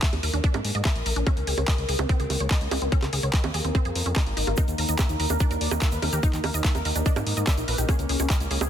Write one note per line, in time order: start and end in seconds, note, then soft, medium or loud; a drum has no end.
0.00 8.70 A#3 medium
0.00 8.70 A#4 medium
0.00 0.05 E5 loud
0.00 kick loud
0.00 clap loud
0.00 closed hi-hat medium
0.13 0.20 D#2 medium
0.13 closed hi-hat medium
0.13 high bongo soft
0.23 0.30 D#2 loud
0.23 0.28 A#4 medium
0.23 open hi-hat loud
0.33 0.40 D#2 medium
0.33 0.38 D4 medium
0.33 closed hi-hat medium
0.44 0.47 D4 loud
0.44 kick loud
0.44 closed hi-hat medium
0.54 0.61 G#2 medium
0.54 0.59 A#4 medium
0.54 closed hi-hat medium
0.54 high bongo medium
0.64 0.71 G#2 loud
0.64 open hi-hat loud
0.75 0.82 G#2 loud
0.75 0.82 D#5 medium
0.75 closed hi-hat medium
0.85 0.88 E5 loud
0.85 kick loud
0.85 clap loud
0.85 closed hi-hat medium
0.85 high bongo soft
0.96 1.02 A#1 medium
0.96 closed hi-hat medium
1.06 1.13 A#1 loud
1.06 1.11 A#4 medium
1.06 open hi-hat loud
1.16 1.23 A#1 medium
1.16 1.21 D4 medium
1.16 closed hi-hat medium
1.27 1.29 C#4 loud
1.27 kick loud
1.27 closed hi-hat medium
1.27 high bongo medium
1.37 1.44 C#2 medium
1.37 closed hi-hat soft
1.47 1.54 C#2 loud
1.47 1.52 G#4 medium
1.47 open hi-hat loud
1.58 1.64 C#2 loud
1.58 1.65 C#5 medium
1.58 closed hi-hat medium
1.58 high bongo soft
1.68 1.71 D#5 loud
1.68 kick loud
1.68 clap loud
1.68 closed hi-hat medium
1.78 1.85 C#2 medium
1.78 closed hi-hat medium
1.89 1.95 C#2 medium
1.89 1.93 G#4 medium
1.89 open hi-hat loud
1.99 2.06 C#2 medium
1.99 2.04 C4 medium
1.99 closed hi-hat medium
1.99 high bongo medium
2.09 2.12 C4 loud
2.09 kick loud
2.09 closed hi-hat medium
2.20 2.26 C#2 medium
2.20 2.24 G#4 medium
2.20 closed hi-hat medium
2.30 2.37 C#2 loud
2.30 open hi-hat loud
2.30 high bongo soft
2.40 2.47 C#2 loud
2.40 2.47 C#5 medium
2.40 closed hi-hat soft
2.51 2.54 D#5 loud
2.51 kick loud
2.51 clap loud
2.51 closed hi-hat medium
2.61 2.68 C#2 medium
2.61 closed hi-hat medium
2.71 2.78 C#2 loud
2.71 2.76 G#4 medium
2.71 open hi-hat loud
2.71 high bongo medium
2.82 2.88 C#2 medium
2.82 2.86 C4 medium
2.82 closed hi-hat medium
2.92 2.95 C#4 loud
2.92 kick loud
2.92 closed hi-hat medium
3.02 3.09 C#2 medium
3.02 clap soft
3.02 closed hi-hat medium
3.02 high bongo soft
3.13 3.19 C#2 loud
3.13 3.17 G#4 medium
3.13 open hi-hat loud
3.23 3.30 C#2 medium
3.23 3.30 C#5 medium
3.23 closed hi-hat medium
3.33 3.36 D#5 loud
3.33 kick loud
3.33 clap loud
3.33 closed hi-hat medium
3.44 3.51 D#2 medium
3.44 closed hi-hat medium
3.44 high bongo medium
3.54 3.61 D#2 loud
3.54 3.59 G#4 medium
3.54 open hi-hat loud
3.64 3.71 D#2 medium
3.64 3.69 C4 medium
3.64 closed hi-hat soft
3.75 3.78 C4 loud
3.75 kick loud
3.75 closed hi-hat medium
3.75 high bongo soft
3.85 3.92 F2 medium
3.85 3.90 G#4 medium
3.85 closed hi-hat medium
3.95 4.02 F2 loud
3.95 open hi-hat loud
4.06 4.13 F2 loud
4.06 4.09 C#4 medium
4.06 closed hi-hat medium
4.16 4.23 D#4 medium
4.16 kick loud
4.16 clap loud
4.16 closed hi-hat medium
4.16 high bongo medium
4.27 4.33 G#1 medium
4.27 closed hi-hat soft
4.37 4.44 G#1 loud
4.37 4.44 D#4 medium
4.37 open hi-hat loud
4.47 4.54 G#1 medium
4.47 4.52 F4 medium
4.47 closed hi-hat soft
4.47 high bongo soft
4.57 4.60 D#4 medium
4.57 4.65 A#4 loud
4.57 kick loud
4.57 closed hi-hat medium
4.57 high bongo soft
4.57 shaker medium
4.68 4.75 D#2 medium
4.68 4.75 D#4 medium
4.68 closed hi-hat soft
4.68 shaker soft
4.78 4.85 D#2 loud
4.78 4.85 D#4 medium
4.78 4.83 A#4 medium
4.78 open hi-hat loud
4.89 4.95 D#2 medium
4.89 4.96 D#4 medium
4.89 4.96 D#5 medium
4.89 closed hi-hat soft
4.89 shaker medium
4.98 5.06 A#4 loud
4.98 5.02 E5 loud
4.98 kick loud
4.98 clap loud
4.98 closed hi-hat medium
4.98 high bongo medium
4.98 shaker medium
5.09 5.16 D#2 medium
5.09 5.16 D#4 medium
5.09 closed hi-hat medium
5.09 shaker soft
5.20 5.26 D#2 medium
5.20 5.27 D#4 medium
5.20 5.24 A#4 medium
5.20 open hi-hat loud
5.29 5.37 D#2 medium
5.29 5.35 D4 medium
5.29 5.37 A#4 loud
5.29 closed hi-hat soft
5.29 high bongo soft
5.29 shaker medium
5.40 5.43 D4 loud
5.40 5.47 D#4 medium
5.40 kick loud
5.40 closed hi-hat medium
5.40 shaker medium
5.51 5.57 D#2 medium
5.51 5.58 D#4 medium
5.51 5.55 A#4 medium
5.51 closed hi-hat medium
5.51 shaker soft
5.61 5.68 D#2 loud
5.61 5.68 D5 medium
5.61 open hi-hat loud
5.71 5.78 D#2 loud
5.71 5.78 D#4 medium
5.71 5.78 D#5 medium
5.71 closed hi-hat soft
5.71 high bongo medium
5.71 shaker medium
5.81 5.89 D#4 medium
5.81 5.85 E5 loud
5.81 kick loud
5.81 clap loud
5.81 closed hi-hat medium
5.81 shaker medium
5.92 5.99 D#2 medium
5.92 5.99 B4 medium
5.92 closed hi-hat medium
5.92 shaker soft
6.02 6.09 D#2 loud
6.02 6.09 D#4 medium
6.02 6.07 A#4 medium
6.02 open hi-hat loud
6.02 high bongo soft
6.13 6.20 D#2 medium
6.13 6.16 G4 medium
6.13 6.20 A#4 medium
6.13 closed hi-hat soft
6.13 shaker medium
6.23 6.30 D#4 medium
6.23 6.26 D#4 loud
6.23 kick loud
6.23 closed hi-hat medium
6.23 shaker medium
6.33 6.40 D#2 medium
6.33 6.41 D#4 medium
6.33 clap soft
6.33 closed hi-hat medium
6.33 shaker soft
6.44 6.51 D#2 loud
6.44 6.48 A#4 medium
6.44 6.51 A#4 loud
6.44 open hi-hat loud
6.44 high bongo medium
6.54 6.61 D#2 loud
6.54 6.61 D#4 medium
6.54 6.61 D#5 medium
6.54 closed hi-hat medium
6.54 shaker medium
6.64 6.72 D#4 medium
6.64 6.67 E5 loud
6.64 kick loud
6.64 clap loud
6.64 closed hi-hat medium
6.64 shaker medium
6.75 6.82 D#2 medium
6.75 6.82 A#4 loud
6.75 closed hi-hat medium
6.75 high bongo soft
6.75 shaker soft
6.85 6.92 D#2 loud
6.85 6.92 D#4 medium
6.85 6.90 A#4 medium
6.85 open hi-hat loud
6.95 7.02 D#2 medium
6.95 7.00 D4 medium
6.95 7.03 D#4 medium
6.95 closed hi-hat medium
6.95 shaker medium
7.06 7.09 D4 loud
7.06 7.13 D#5 loud
7.06 kick loud
7.06 closed hi-hat medium
7.06 shaker medium
7.16 7.23 G#2 medium
7.16 7.23 D#4 medium
7.16 7.21 A#4 medium
7.16 closed hi-hat medium
7.16 high bongo medium
7.16 shaker soft
7.26 7.33 G#2 loud
7.26 7.34 D#4 medium
7.26 open hi-hat loud
7.37 7.44 G#2 medium
7.37 7.44 D#4 medium
7.37 7.44 D#5 medium
7.37 closed hi-hat medium
7.37 shaker medium
7.47 7.54 D5 medium
7.47 7.50 E5 loud
7.47 kick loud
7.47 clap loud
7.47 closed hi-hat medium
7.47 high bongo soft
7.47 shaker medium
7.58 7.64 A#1 medium
7.58 7.65 D#4 medium
7.58 closed hi-hat medium
7.58 shaker soft
7.68 7.75 A#1 loud
7.68 7.73 A#4 medium
7.68 7.75 B4 medium
7.68 open hi-hat loud
7.78 7.85 A#1 medium
7.78 7.85 D#4 medium
7.78 7.81 G4 medium
7.78 closed hi-hat soft
7.78 shaker medium
7.89 7.91 C#4 loud
7.89 7.96 G#4 loud
7.89 kick loud
7.89 closed hi-hat medium
7.89 high bongo medium
7.89 shaker medium
7.99 8.06 C#2 medium
7.99 8.06 C#4 medium
7.99 closed hi-hat medium
7.99 shaker soft
8.09 8.16 C#2 loud
8.09 8.16 C#4 medium
8.09 8.14 G#4 medium
8.09 open hi-hat loud
8.20 8.26 C#2 medium
8.20 8.27 C#4 medium
8.20 8.27 C#5 medium
8.20 closed hi-hat medium
8.20 high bongo soft
8.20 shaker medium
8.30 8.37 A#4 loud
8.30 8.33 D#5 loud
8.30 kick loud
8.30 clap loud
8.30 closed hi-hat medium
8.30 shaker medium
8.40 8.47 C#2 medium
8.40 8.47 C#4 medium
8.40 closed hi-hat medium
8.40 shaker soft
8.51 8.57 C#2 medium
8.51 8.58 C#4 medium
8.51 8.55 G#4 medium
8.51 open hi-hat loud
8.61 8.68 C#2 loud
8.61 8.66 C4 medium
8.61 8.68 G#4 medium
8.61 closed hi-hat medium
8.61 high bongo medium
8.61 shaker medium